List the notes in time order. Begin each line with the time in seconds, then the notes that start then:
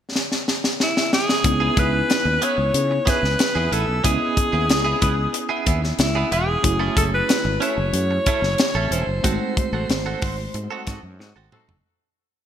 0.16 snare
0.32 snare
0.48 snare
0.64 snare
0.80 E4, snare
0.97 snare
1.13 G#4, snare
1.29 snare
1.44 C#2 B3 C#4 D#4 E4 G#5, muted clean electric guitar stroke, kick, closed hi-hat
1.60 B3 E4 G#4
1.77 C#2 B3 E4 G#4 B4, kick, closed hi-hat
1.93 muted clean electric guitar stroke
2.10 muted clean electric guitar stroke, snare, closed hi-hat
2.25 D#2, muted clean electric guitar stroke
2.42 B3 E4 G#4 C#5, closed hi-hat
2.58 C#2, muted clean electric guitar stroke
2.74 C#3, closed hi-hat
2.91 muted clean electric guitar stroke
3.06 B3 E4 G#4 B4, kick, snare, closed hi-hat
3.23 C#2, muted clean electric guitar stroke, snare
3.39 muted clean electric guitar stroke, snare, closed hi-hat
3.55 E2 B3 E4 G#4
3.71 A1 B3 E4 G#4 A4, closed hi-hat
3.87 B1, muted clean electric guitar stroke
4.04 C#2 B3 C#4 E4 G#4 D#5, kick, closed hi-hat
4.36 muted clean electric guitar stroke, kick, closed hi-hat
4.52 D#2 B3 E4 G#4
4.69 C#2, muted clean electric guitar stroke, snare, closed hi-hat
4.85 B3 E4 G#4
5.01 C#2 B3 E4 B4, kick, closed hi-hat
5.17 muted clean electric guitar stroke
5.33 muted clean electric guitar stroke, closed hi-hat
5.49 B3 E4 G#4
5.66 D#2 B3 E4 G#4, kick, closed hi-hat
5.82 muted clean electric guitar stroke, snare
5.99 C#2 E4, muted clean electric guitar stroke, snare, closed hi-hat
6.15 B3 E4 G#4
6.31 E1 B3 E4 G#4 B4, closed hi-hat
6.47 muted clean electric guitar stroke
6.62 F#1 A3 C#4 E4 F#4 G#4, muted clean electric guitar stroke, kick, closed hi-hat
6.79 C#4 E4 A4
6.96 F#1 C#4 E4 A4, kick, closed hi-hat
7.12 B4, muted clean electric guitar stroke
7.29 muted clean electric guitar stroke, snare, closed hi-hat
7.45 G#1, muted clean electric guitar stroke
7.61 C#4 E4 A4 C#5, closed hi-hat
7.78 F#1, muted clean electric guitar stroke
7.93 F#2, closed hi-hat
8.11 muted clean electric guitar stroke
8.26 C#4 E4 A4, kick, closed hi-hat
8.42 F#1, muted clean electric guitar stroke, snare
8.58 muted clean electric guitar stroke, snare, closed hi-hat
8.75 A1 C#4 E4 A4
8.91 E1 C#4 E4 A4 C5, closed hi-hat
9.07 F#1
9.23 G#1 G#3 A3 C4 D#4 F#4 A4, kick, closed hi-hat
9.57 muted clean electric guitar stroke, kick, closed hi-hat
9.73 A1 C4 F#4 A4
9.89 G#1, muted clean electric guitar stroke, snare, closed hi-hat
10.06 C4 F#4 A4
10.22 G#1 C4 F#4 C5, kick, open hi-hat
10.38 muted clean electric guitar stroke
10.54 G#2, muted clean electric guitar stroke, closed hi-hat
10.71 F#3 C4 D#4 F#4 A4
10.86 G#2 F#3 C4 D#4 F#4 A4, kick, snare, closed hi-hat
11.03 F#2, muted clean electric guitar stroke
11.19 G#2 F#3 C4 D#4 F#4, muted clean electric guitar stroke, snare
11.36 G#1 C4 F#4 A4
11.52 A3 C4 D#4 F#4 A4 C5, mid tom
11.68 F#1, muted clean electric guitar stroke, floor tom